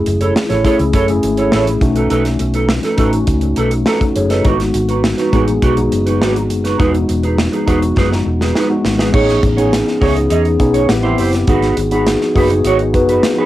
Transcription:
Already playing: A3 C#4 E4 G#4
0.06 F#1, muted clean electric guitar stroke, closed hi-hat
0.21 E4 A4 C#5, closed hi-hat
0.35 muted clean electric guitar stroke, snare
0.49 A1 E4 A4 C#5, snare, closed hi-hat
0.64 A3 C#4 E4 G#4 A4 C#5, kick, closed hi-hat
0.79 C#2, muted clean electric guitar stroke, closed hi-hat
0.93 F#1 E4 A4 C#5, kick, closed hi-hat
1.08 A3 C#4 E4 G#4, muted clean electric guitar stroke, closed hi-hat
1.23 G#1, muted clean electric guitar stroke, closed hi-hat
1.37 E4 A4 C#5, closed hi-hat
1.52 A1 E4 A4 C#5, snare
1.67 muted clean electric guitar stroke, closed hi-hat
1.81 B1 A3 C#4 D#4 F#4, muted clean electric guitar stroke, kick, closed hi-hat
1.96 D#4 A4 B4, closed hi-hat
2.10 B1 D#4 A4 B4, closed hi-hat
2.25 muted clean electric guitar stroke, snare, closed hi-hat
2.39 B1, muted clean electric guitar stroke, closed hi-hat
2.54 D#4 A4 B4, closed hi-hat
2.69 muted clean electric guitar stroke, snare
2.83 D#4 A4 B4, snare, closed hi-hat
2.97 A1 A3 C#4 D#4 F#4 A4 B4, kick, closed hi-hat
3.13 muted clean electric guitar stroke, closed hi-hat
3.27 C#2, kick, closed hi-hat
3.41 muted clean electric guitar stroke, closed hi-hat
3.56 B1 D#4 A4 B4, closed hi-hat
3.71 muted clean electric guitar stroke, closed hi-hat
3.86 C#4 D#4 F#4 A4 B4, snare
4.01 D#4 A4, muted clean electric guitar stroke, kick, closed hi-hat
4.16 F#1 G#4 C#5, muted clean electric guitar stroke, closed hi-hat
4.30 D#4 A4 B4 D#5, snare, closed hi-hat
4.45 G#1 G#3 B3 D#4 E4 F#4 B4, kick, closed hi-hat
4.53 F#4
4.60 muted clean electric guitar stroke, snare, closed hi-hat
4.74 G#1, muted clean electric guitar stroke, closed hi-hat
4.89 D#4 F#4 B4, closed hi-hat
5.04 muted clean electric guitar stroke, snare
5.18 D#4 F#4 B4, snare, closed hi-hat
5.33 A1 G#3 B3 D#4 F#4 G#4 B4, kick, closed hi-hat
5.47 muted clean electric guitar stroke, closed hi-hat
5.62 B1 D#4 F#4 B4, kick, closed hi-hat
5.77 G#3 B3 D#4 F#4, muted clean electric guitar stroke, closed hi-hat
5.91 F#1, muted clean electric guitar stroke, closed hi-hat
6.06 D#4 F#4 B4, closed hi-hat
6.21 G#1 D#4 F#4 B4, snare
6.35 muted clean electric guitar stroke, closed hi-hat
6.50 F#1, muted clean electric guitar stroke, closed hi-hat
6.64 D#4 F#4 B4, snare, closed hi-hat
6.78 E1 G#3 B3 D#4 F4 G#4 B4, kick, closed hi-hat
6.87 F#4
6.94 muted clean electric guitar stroke, closed hi-hat
7.08 E1, muted clean electric guitar stroke, closed hi-hat
7.23 D#4 G#4 B4, closed hi-hat
7.38 muted clean electric guitar stroke, snare
7.52 D#4 G#4 B4, closed hi-hat
7.66 E1 G#3 B3 D#4 F#4 G#4 B4, kick, closed hi-hat
7.81 muted clean electric guitar stroke, closed hi-hat
7.97 F#1 D#4 G#4 B4, kick, snare
8.11 muted clean electric guitar stroke, snare
8.26 E1, muted clean electric guitar stroke
8.41 D#4 G#4 B4, snare
8.55 D#4 G#4 B4, snare
8.69 G#3 B3 D#4 F#4, muted clean electric guitar stroke
8.84 G#1, muted clean electric guitar stroke, snare
8.98 D#4 G#4 B4, snare
9.13 A1 B3 C#4 D#4 G#4 C#5, kick, crash
9.29 snare, closed hi-hat
9.43 A1, muted clean electric guitar stroke, kick, closed hi-hat
9.57 B3 C#4 D#4 G#4 C#5, closed hi-hat
9.73 snare, closed hi-hat
9.86 muted clean electric guitar stroke, snare
10.01 C#2 B3 C#4 D#4 G#4 C#5, kick, open hi-hat
10.16 muted clean electric guitar stroke, closed hi-hat
10.30 E2 D#4 G#4 D#5, closed hi-hat
10.45 muted clean electric guitar stroke, closed hi-hat
10.59 B1 B3 C#4 D#4 G#4, muted clean electric guitar stroke, kick, closed hi-hat
10.74 D#4 G#4 C#5, closed hi-hat
10.89 A1 B3 C4 E4 G4, muted clean electric guitar stroke, snare, closed hi-hat
11.03 B3 C4 E4 G4 C5
11.18 F#1 E4 G4 C5, open hi-hat
11.33 muted clean electric guitar stroke, snare, closed hi-hat
11.47 G#1 B3 D#4 F#4 G#4 B4, kick, closed hi-hat
11.62 snare, closed hi-hat
11.77 G#1, muted clean electric guitar stroke, closed hi-hat
11.91 B3 D#4 F#4 G#4 B4, closed hi-hat
12.07 snare, closed hi-hat
12.21 muted clean electric guitar stroke, snare
12.35 F#1 B3 D#4 F#4 G#4 B4, kick, open hi-hat
12.50 muted clean electric guitar stroke, closed hi-hat
12.65 G#1 D#4 F#4 C#5, closed hi-hat
12.79 muted clean electric guitar stroke, closed hi-hat
12.93 F#1 B3 D#4 F#4 B4, muted clean electric guitar stroke, kick, closed hi-hat
13.09 D#4 F#4 B4, closed hi-hat
13.23 muted clean electric guitar stroke, snare, closed hi-hat
13.38 B3 D#4 F#4 G#4 B4

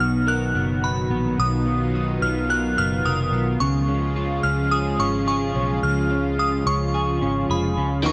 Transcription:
Already playing: B2 D#3 F#3 B3 D#4 F#4 B4
0.00 B1 B3 F6
0.27 A#4 F#6
0.55 F#1 B3
0.84 B5
1.10 A#1 B3
1.38 B1 B2 F4 D#6
1.66 B3
1.94 D#4
2.21 B1 B3 F6
2.49 A#4 F#6
2.77 F#1 B3 F6
3.05 F1 A#4 D#6
3.32 B1 B3
3.60 C#2 C#3 F3 G#3 C#6
3.88 C#4
4.16 F4
4.43 C#2 C#4 F6
4.71 G#4 D#6
4.99 G#1 C#4 C#6
5.27 G#4 C#6
5.55 B1 C#4
5.83 C#2 C#3 F6
6.10 C#4
6.38 F4 D#6
6.66 C#2 C#4 C#6
6.94 G#4
7.22 G#1 C#4
7.49 F1 G#4 B5
7.77 C#2 C#4
8.03 D#2 D#3 A#3 D#4 F4 C#6
8.08 A#4

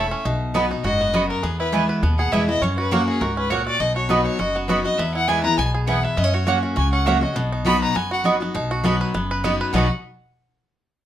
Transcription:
Already playing: E1 A2 C#4 A4 E5
0.11 C#4
0.25 B1 B2 D#4
0.54 F#3 B3 D#4 F#4 D#5 B5
0.70 D#4 F#4
0.83 F#1 G#2 F#4 D#5
1.01 B3
1.14 F#2 B3 F#4 D#5 B5
1.29 B3 A#4
1.43 E2 B3 G#4
1.59 E4 B4
1.72 E3 G#3 B3 E4 G#4 B4 G#5
1.89 B4
2.03 D#2 B2 B3
2.18 G#4 F#5
2.32 E2 E3 G#3 B3 E4 B4 E5 G#5
2.48 B3 E4 D#5
2.62 F#2 C#4 C#5
2.78 F#4 B4
2.91 F#3 A#3 C#4 F#4 A#4 C#5 F#5
3.07 F#4 G#4
3.21 C#2 G#2 F#4 A#4
3.37 C#4 B4
3.50 A#2 A#3 F#4 C#5 F#5
3.66 F#4 D5
3.80 B1 B2 D#4 D#5
3.96 F#4 C#5
4.09 F#3 B3 D#4 F#4 B4 D#5 B5
4.24 D#4 C#5
4.39 F#1 F#2 F#4 D#5
4.55 B3 F#4
4.68 F#3 B3 D#4 F#4 B4 D#5 B5
4.84 B3 D#4 F#4 D#5
4.98 E2 B3 E5
5.14 E4 F#5
5.28 E3 G#3 B3 E4 G#4 B4 G#5
5.44 B3 E4 B4 A#5
5.58 B1 B2 B3 G#5
5.74 G#4
5.87 E2 B3 E4 B4 F#5 G#5
6.04 B3 E5
6.17 F#2 B3 D#5
6.24 C#4
6.34 F#4 C#5
6.47 F#3 A#3 C#4 F#4 C#5 F#5
6.63 F#4
6.76 C#2 C#3 F#4 G#5
6.93 C#4 F#5
7.06 F#3 A#3 C#4 F#4 C#5 E5 F#5
7.21 C#4 F#4 D#5
7.36 B1 B2 B3
7.52 D#4
7.65 F#3 B3 D#4 F#4 D#5 B5
7.82 B4 A#5
7.95 F#1 F#2 B3 G#5
8.11 F#4 F#5
8.24 F#3 B3 D#4 F#4 D#5 B5
8.40 B3 D#4 F#4
8.54 B1 B2 D#4
8.71 F#4
8.84 F#3 B3 D#4 F#4 D#5 B5
9.01 B4
9.14 F#1 F#2 B3
9.31 B4
9.44 F#3 B3 D#4 F#4 D#5 B5
9.61 B4
9.73 B1 B2 F#3 B3 D#4 F#4 D#5 F#5 B5
9.78 F#4

